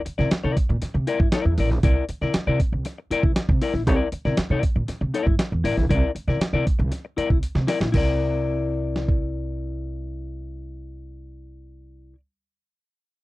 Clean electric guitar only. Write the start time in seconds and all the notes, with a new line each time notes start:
0.06 muted clean electric guitar stroke
0.18 E4 A#4 D5
0.31 muted clean electric guitar stroke
0.44 E4 A#4 D5
0.57 muted clean electric guitar stroke
0.69 muted clean electric guitar stroke
0.82 muted clean electric guitar stroke
0.94 muted clean electric guitar stroke
1.07 E4 A#4 D5
1.20 muted clean electric guitar stroke
1.33 E4 A#4 D5
1.46 muted clean electric guitar stroke
1.59 E4 A#4 D5
1.71 muted clean electric guitar stroke
1.83 E4 A#4 D5
2.09 muted clean electric guitar stroke
2.22 E4 A#4 D5
2.35 muted clean electric guitar stroke
2.47 E4 A#4 D5
2.60 muted clean electric guitar stroke
2.73 muted clean electric guitar stroke
2.86 muted clean electric guitar stroke
2.98 muted clean electric guitar stroke
3.11 E4 A#4 D5
3.24 muted clean electric guitar stroke
3.49 muted clean electric guitar stroke
3.62 E4 A#4 D5
3.75 muted clean electric guitar stroke
3.87 E4 A#4 D5
4.12 muted clean electric guitar stroke
4.25 E4 A#4 D5
4.38 muted clean electric guitar stroke
4.51 E4 A#4 D5
4.63 muted clean electric guitar stroke
4.76 muted clean electric guitar stroke
4.88 muted clean electric guitar stroke
5.01 muted clean electric guitar stroke
5.14 E4 A#4 D5
5.27 muted clean electric guitar stroke
5.39 muted clean electric guitar stroke
5.52 muted clean electric guitar stroke
5.64 E4 A#4 D5
5.78 muted clean electric guitar stroke
5.89 E4 A#4 D5
6.15 muted clean electric guitar stroke
6.28 E4 A#4 D5
6.41 muted clean electric guitar stroke
6.54 E4 A#4 D5
6.66 muted clean electric guitar stroke
6.79 muted clean electric guitar stroke
6.92 muted clean electric guitar stroke
7.05 muted clean electric guitar stroke
7.17 E4 A#4 D5
7.30 muted clean electric guitar stroke
7.56 muted clean electric guitar stroke
7.67 E4 A#4 D5
7.80 muted clean electric guitar stroke
7.92 E4 A#4
7.97 D5